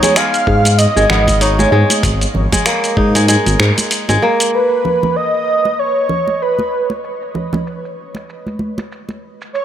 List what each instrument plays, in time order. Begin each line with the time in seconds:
Already playing: kora B3 D#4, soft synth lead C#5
0.02 kora G#3, closed hi-hat, muted conga, high conga, low conga, shaker
0.16 kora G#3, soft synth lead F5, finger snap, closed hi-hat, shaker
0.34 closed hi-hat, shaker
0.47 analog synth bass G#2, kick
0.65 closed hi-hat, muted conga, shaker
0.78 soft synth lead D#5, closed hi-hat, shaker
0.96 analog synth bass G#1, kora G#3, shaker
1.10 analog synth bass G#1, kora B3, finger snap, low conga
1.28 kick, closed hi-hat, muted conga, shaker
1.41 kora D#4, soft synth lead C#5, closed hi-hat, shaker
1.59 kora G#3, muted conga, high conga, shaker
1.72 analog synth bass G#2, kora G#3
1.90 closed hi-hat, muted conga, high conga, shaker
2.03 analog synth bass G#1, kick, closed hi-hat, shaker
2.21 closed hi-hat, shaker
2.34 analog synth bass G#1, high conga, low conga
2.52 kora G#3, kick, closed hi-hat, muted conga, high conga, low conga, shaker
2.66 kora A#3, finger snap, closed hi-hat, shaker
2.84 closed hi-hat, shaker
2.97 analog synth bass G#2, kora D#4, kick
3.15 kora G#3, closed hi-hat, muted conga, shaker
3.28 kora G#3, closed hi-hat, shaker
3.46 analog synth bass G#1, closed hi-hat, high conga, shaker
3.60 analog synth bass G#2, finger snap, high conga
3.78 closed hi-hat, muted conga, shaker
3.91 closed hi-hat, shaker
4.09 analog synth bass G#1, kora G#3, closed hi-hat, muted conga, shaker
4.22 kora A#3
4.40 closed hi-hat, shaker
4.53 soft synth lead B4, shaker
4.72 shaker
4.84 high conga, low conga
5.03 muted conga, high conga, low conga, shaker
5.16 soft synth lead D#5, shaker
5.35 shaker
5.65 muted conga, shaker
5.79 soft synth lead C#5, shaker
5.97 shaker
6.09 low conga
6.27 muted conga, shaker
6.42 soft synth lead B4, shaker
6.59 muted conga, high conga, shaker
6.90 muted conga, shaker
7.04 shaker
7.22 shaker
7.34 high conga, low conga
7.53 muted conga, high conga, low conga, shaker
7.67 shaker
7.85 shaker
8.15 muted conga, shaker
8.29 shaker
8.46 high conga, shaker
8.59 high conga
8.78 muted conga, shaker
8.92 shaker
9.09 muted conga, shaker
9.41 shaker
9.53 soft synth lead C#5, shaker